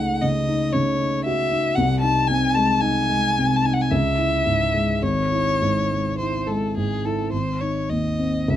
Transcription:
Already playing: grand piano C#2 C#3 A3 D#4, violin F#5
0.22 grand piano C#3, violin D#5
0.49 grand piano D#4
0.73 grand piano C#3, violin C#5
0.99 grand piano D#4
1.25 grand piano F#4, violin E5
1.52 grand piano D#4
1.75 grand piano C2, violin F#5
2.00 grand piano D#4, violin A5
2.27 grand piano C3, violin G#5
2.54 grand piano G#3, violin A5
2.81 grand piano D#4, violin G#5
3.09 grand piano G#3
3.38 grand piano C3
3.56 violin A5
3.64 grand piano D#4, violin G#5
3.74 violin F#5
3.81 violin G#5
3.91 grand piano C#2, violin E5
4.18 grand piano E4
4.46 grand piano G#2
4.74 grand piano G#3
5.02 grand piano G#1, violin C#5
5.32 grand piano E4
5.62 grand piano G#2
5.91 grand piano G#3
6.18 grand piano E4, violin C5
6.47 grand piano G#3, violin A4
6.77 grand piano G#2, violin G#4
7.05 grand piano E4, violin A4
7.32 grand piano G#1, violin C5
7.61 grand piano D#4, violin C#5
7.89 grand piano D#2, violin D#5
8.19 grand piano C4
8.48 grand piano C#2, violin E5

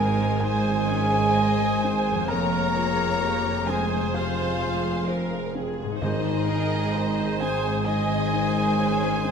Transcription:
Already playing: double bass section G#1, felt piano G#2 G#3 C4 D#4 G#4 C5 D#5 G#5, harp G#2 G#3 D#4 C6, cello section G#2, french horn section G#3, clarinet G#4, viola section A#4, violin section C5 G#5, flute G#5
0.19 felt piano G#3
0.40 felt piano D#3 G#5, french horn section G#3, clarinet G#4, viola section C5, violin section C5, flute G#5
0.44 violin section G#5
0.66 felt piano G#3
0.88 viola section C#4, felt piano D#4
1.14 felt piano G#4
1.34 felt piano C5, viola section D#5
1.60 felt piano G#4
1.82 felt piano C4, viola section C5
2.07 harp F2, felt piano G#3
2.16 harp G#3 F4
2.25 harp G#4, felt piano A#5
2.29 double bass section F1, cello section F2, felt piano F2, french horn section A#3, clarinet A#4, viola section A#4, violin section C#5 A#5, flute A#5
2.54 felt piano G#3
2.76 felt piano F4, viola section G#4
2.98 felt piano G#4
3.22 viola section G4, felt piano G#4
3.46 felt piano G#4
3.67 french horn section G#3, felt piano C4 G#5, clarinet G#4, viola section C5, violin section C5 G#5, flute G#5
3.91 felt piano G#3
4.13 felt piano C3 F5, french horn section F3, clarinet F4, violin section G#4 F5, flute F5
4.38 felt piano G#3
4.62 felt piano F4
4.86 felt piano G#4
5.08 viola section A#4, felt piano C5
5.32 felt piano G#4
5.55 felt piano C4, viola section G#4
5.79 harp G#2, felt piano G#3
5.87 harp G#3
5.92 harp D#4
5.96 harp C5
6.01 double bass section G#1, cello section G#2, timpani G#2, felt piano G#2 D#5, french horn section D#3, clarinet D#4, violin section G#4 D#5, viola section C5, flute D#5
6.26 felt piano G#3
6.47 felt piano D#4, viola section A#4
6.71 felt piano G#4
6.93 viola section C5, felt piano C5
7.18 felt piano G#4
7.39 french horn section G#3, felt piano C4 G#5, clarinet G#4, violin section C5 G#5, flute G#5
7.65 felt piano G#3
7.85 felt piano D#3 G#5, french horn section G#3, clarinet G#4, violin section C5 G#5, viola section D#5, flute G#5
8.10 felt piano G#3
8.33 felt piano D#4
8.55 felt piano G#4
8.78 viola section C#4, felt piano C5
9.24 felt piano C4, viola section C5

